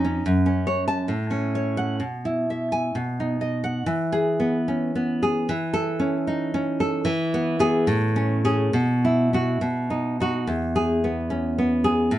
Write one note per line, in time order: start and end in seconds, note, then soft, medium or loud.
0.00 0.19 F2 medium
0.00 0.23 D#4 medium
0.00 0.24 C#5 medium
0.04 0.24 C#4 medium
0.26 1.08 F#2 medium
0.46 1.10 C#4 medium
0.67 0.87 C#5 medium
0.88 1.09 A5 medium
1.08 1.99 A2 medium
1.31 2.01 C#4 soft
1.55 2.02 C#5 medium
1.77 2.01 F#5 medium
2.00 2.92 B2 medium
2.25 2.95 E4 soft
2.50 2.96 E5 soft
2.72 2.95 G#5 medium
2.95 3.83 B2 medium
3.20 3.86 D#4 soft
3.41 3.85 D#5 soft
3.64 3.85 F#5 medium
3.86 5.46 E3 medium
4.12 4.57 G#4 medium
4.40 4.94 B3 medium
4.68 5.50 C#4 soft
4.95 5.50 B3 medium
5.23 5.49 G#4 medium
5.49 7.03 E3 medium
5.74 6.16 A4 medium
6.00 6.53 C#4 medium
6.27 7.08 D#4 medium
6.54 7.08 C#4 medium
6.80 7.07 A4 medium
7.05 7.86 E3 medium
7.34 7.58 B3 medium
7.59 7.85 B3 medium
7.59 7.86 G#4 medium
7.87 8.70 A2 medium
8.16 8.43 C#4 medium
8.45 8.71 C#4 medium
8.45 8.71 G#4 medium
8.73 9.58 B2 medium
9.05 9.32 E4 medium
9.33 9.59 E4 medium
9.33 9.59 F#4 medium
9.61 10.45 B2 medium
9.90 10.19 D#4 soft
10.20 10.45 D#4 soft
10.20 10.46 F#4 medium
10.47 12.07 E2 medium
10.76 11.19 G#4 medium
11.04 11.57 B3 medium
11.30 12.11 C#4 soft
11.58 12.12 B3 medium
11.84 12.11 G#4 medium
12.11 12.19 A2 medium